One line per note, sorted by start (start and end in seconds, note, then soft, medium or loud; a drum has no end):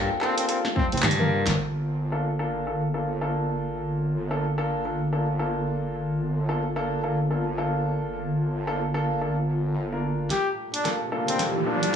0.00 1.54 F5 medium
0.00 1.57 G5 medium
0.00 1.54 A5 medium
0.21 0.46 A#3 loud
0.21 0.35 C4 loud
0.21 0.46 D4 medium
0.21 0.46 F4 medium
0.21 0.46 A4 loud
0.21 clap soft
0.38 0.45 C4 medium
0.38 closed hi-hat medium
0.49 0.61 A#3 medium
0.49 0.59 C4 medium
0.49 0.61 D4 medium
0.49 0.61 F4 medium
0.49 0.61 A4 medium
0.49 closed hi-hat medium
0.65 snare medium
0.76 0.86 C4 medium
0.76 kick medium
0.76 high tom medium
0.92 1.02 F1 medium
0.92 1.00 C4 medium
0.92 closed hi-hat soft
0.97 closed hi-hat soft
1.03 1.44 G2 loud
1.03 clap loud
1.03 closed hi-hat medium
1.03 mid tom medium
1.11 closed hi-hat medium
1.19 1.57 A#3 medium
1.19 1.57 D4 medium
1.19 1.57 F4 medium
1.19 1.57 A#4 medium
1.19 mid tom medium
1.46 1.56 G1 loud
1.46 snare medium
1.46 closed hi-hat medium
1.58 10.29 G1 medium
1.58 10.27 F5 medium
1.58 10.27 A5 medium
2.12 2.25 A#3 medium
2.12 2.25 D4 medium
2.12 2.25 F4 medium
2.12 2.25 A4 medium
2.39 2.64 A#3 medium
2.39 2.64 D4 medium
2.39 2.64 F4 medium
2.39 2.64 A4 medium
2.67 2.80 A#3 medium
2.67 2.80 D4 medium
2.67 2.80 F4 medium
2.67 2.80 A4 medium
2.94 3.07 A#3 medium
2.94 3.07 D4 medium
2.94 3.07 F4 medium
2.94 3.07 A4 medium
3.21 4.28 A#3 medium
3.21 4.28 D4 medium
3.21 4.28 F4 medium
3.21 4.28 A4 medium
4.31 4.43 A#3 medium
4.31 4.43 D4 medium
4.31 4.43 F4 medium
4.31 4.43 A4 medium
4.58 4.83 A#3 medium
4.58 4.83 D4 medium
4.58 4.83 F4 medium
4.58 4.83 A4 medium
4.85 4.98 A#3 medium
4.85 4.98 D4 medium
4.85 4.98 F4 medium
4.85 4.98 A4 medium
5.13 5.25 A#3 medium
5.13 5.25 D4 medium
5.13 5.25 F4 medium
5.13 5.25 A4 medium
5.39 6.46 A#3 medium
5.39 6.46 D4 medium
5.39 6.46 F4 medium
5.39 6.46 A4 medium
6.49 6.62 A#3 medium
6.49 6.61 D4 medium
6.49 6.62 F4 medium
6.49 6.62 A4 medium
6.76 7.01 A#3 medium
6.76 7.01 D4 medium
6.76 7.01 F4 medium
6.76 7.01 A4 medium
7.04 7.16 A#3 medium
7.04 7.16 D4 medium
7.04 7.16 F4 medium
7.04 7.16 A4 medium
7.31 7.43 A#3 medium
7.31 7.43 D4 medium
7.31 7.43 F4 medium
7.31 7.43 A4 medium
7.58 8.65 A#3 medium
7.58 8.65 D4 medium
7.58 8.65 F4 medium
7.58 8.65 A4 medium
8.67 8.80 A#3 medium
8.67 8.80 D4 medium
8.67 8.80 F4 medium
8.67 8.80 A4 medium
8.94 9.19 A#3 medium
8.94 9.19 D4 medium
8.94 9.19 F4 medium
8.94 9.19 A4 medium
9.22 9.34 A#3 medium
9.22 9.34 D4 medium
9.22 9.34 F4 medium
9.22 9.34 A4 medium
9.92 10.29 A#3 medium
9.92 10.29 D4 medium
9.92 10.29 F4 medium
9.92 10.29 A#4 medium
10.30 11.96 A#3 medium
10.30 10.50 G4 medium
10.30 11.96 G4 medium
10.30 11.96 A4 medium
10.30 11.96 F5 medium
10.30 snare soft
10.30 closed hi-hat medium
10.30 riser medium
10.74 10.89 D4 medium
10.74 closed hi-hat medium
10.85 10.98 A#3 medium
10.85 10.98 D4 medium
10.85 10.98 F4 medium
10.85 10.98 A4 medium
10.85 snare soft
10.85 closed hi-hat soft
11.12 11.37 A#3 medium
11.12 11.37 D4 medium
11.12 11.37 F4 medium
11.12 11.37 A4 loud
11.28 11.43 C4 medium
11.28 closed hi-hat medium
11.39 11.52 A#3 medium
11.39 11.52 D4 medium
11.39 11.52 F4 medium
11.39 11.52 A4 medium
11.39 snare soft
11.39 closed hi-hat medium
11.66 11.80 A#3 medium
11.66 11.96 D4 medium
11.66 11.79 D4 medium
11.66 11.79 F4 medium
11.66 11.79 A4 medium
11.83 closed hi-hat medium